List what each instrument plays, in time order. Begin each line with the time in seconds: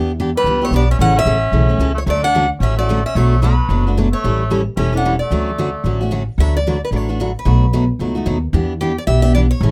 Already playing: upright bass E2, steel-string acoustic guitar E3 B3 D4 G4
0.20 steel-string acoustic guitar E3 B3 D4 G4
0.37 cor anglais G3, steel-string acoustic guitar B4
0.44 upright bass C#2, steel-string acoustic guitar E3 B3 D4 G4
0.62 cor anglais A3, steel-string acoustic guitar B3 D4 G4 C#5
0.71 upright bass B1, steel-string acoustic guitar E3 B3 D4 G4, cor anglais B3
0.76 steel-string acoustic guitar D5
0.91 cor anglais C#4, steel-string acoustic guitar E5
0.99 upright bass A1, steel-string acoustic guitar C#3 E3 A3 C#4 A4 F#5, cor anglais C#4
1.16 cor anglais C#4, steel-string acoustic guitar E5
1.26 upright bass A1, steel-string acoustic guitar C#3 E3 A3 C#4 A4
1.52 upright bass B1, steel-string acoustic guitar C#3 E3 A3 C#4 A4
1.69 steel-string acoustic guitar A3 C#4 A4
1.78 upright bass C#2, steel-string acoustic guitar C#3 E3 A3 C#4 A4
1.94 cor anglais A3, steel-string acoustic guitar C#5
2.06 upright bass D2, steel-string acoustic guitar D3 F#3 A3 C#4 F#4 D5, cor anglais A3
2.23 cor anglais D4, steel-string acoustic guitar F#5
2.35 steel-string acoustic guitar D3 F#3 A3 C#4 F#4
2.60 upright bass A1, steel-string acoustic guitar D3 F#3 A3 C#4 F#4 E5, cor anglais C#4
2.77 cor anglais A3, steel-string acoustic guitar A3 C#4 F#4 D5
2.89 steel-string acoustic guitar D3 F#3 A3 C#4 F#4
3.06 cor anglais C#4, steel-string acoustic guitar E5
3.15 upright bass B1, steel-string acoustic guitar B2 F#3 A3 D4 F#4 C#5, cor anglais A3
3.42 steel-string acoustic guitar B2 F#3 A3 D4 F#4 B4, cor anglais F#3
3.69 upright bass F#1, steel-string acoustic guitar B2 F#3 A3 D4 F#4
3.87 steel-string acoustic guitar A3 D4 F#4
3.97 steel-string acoustic guitar B2 F#3 A3 D4 F#4
4.12 cor anglais A3, steel-string acoustic guitar C#5
4.24 upright bass A1, steel-string acoustic guitar E3 G3 C#4 E4 A4
4.50 steel-string acoustic guitar E3 G3 C#4 E4 A4
4.77 upright bass E1, steel-string acoustic guitar E3 G3 C#4 E4 A4 E5, cor anglais C#4
4.93 steel-string acoustic guitar C#4 E4 A4, cor anglais D4
4.97 steel-string acoustic guitar F#5
5.05 steel-string acoustic guitar E3 G3 C#4 E4 A4
5.19 cor anglais A3, steel-string acoustic guitar D5
5.31 upright bass D2, steel-string acoustic guitar D3 F#3 A3 C#4 F#4
5.58 steel-string acoustic guitar D3 F#3 A3 C#4 F#4
5.84 upright bass A1, steel-string acoustic guitar D3 F#3 A3 C#4 F#4
6.01 steel-string acoustic guitar A3 C#4 F#4
6.11 steel-string acoustic guitar D3 F#3 A3 C#4 F#4
6.38 upright bass D2, steel-string acoustic guitar D3 F#3 A3 D4 F#4 B4 E5
6.57 steel-string acoustic guitar D5
6.67 steel-string acoustic guitar D3 F#3 A3 D4 F#4 B4
6.85 steel-string acoustic guitar B4
6.91 upright bass A1, steel-string acoustic guitar D3 F#3 A3 D4 F#4 B4
6.96 steel-string acoustic guitar C#5
7.09 steel-string acoustic guitar A3 D4 F#4 B4
7.20 steel-string acoustic guitar D3 F#3 A3 D4 F#4 B4
7.39 steel-string acoustic guitar B4
7.45 upright bass B1, steel-string acoustic guitar B2 F#3 A3 D#4 F#4
7.73 steel-string acoustic guitar B2 F#3 A3 D#4 F#4
7.99 upright bass C#2, steel-string acoustic guitar B2 F#3 A3 D#4 F#4
8.15 steel-string acoustic guitar A3 D#4 F#4
8.26 upright bass D#2, steel-string acoustic guitar B2 F#3 A3 D#4 F#4
8.53 upright bass E2, steel-string acoustic guitar E3 B3 D4 G4
8.81 steel-string acoustic guitar E3 B3 D4 G4
8.98 steel-string acoustic guitar D5
9.07 upright bass B1, steel-string acoustic guitar E3 B3 D4 G4 E5
9.22 steel-string acoustic guitar B3 D4 G4 E5
9.35 steel-string acoustic guitar E3 B3 D4 G4 D5
9.51 steel-string acoustic guitar C#5
9.61 upright bass A1, steel-string acoustic guitar C#3 E3 A3 C#4 A4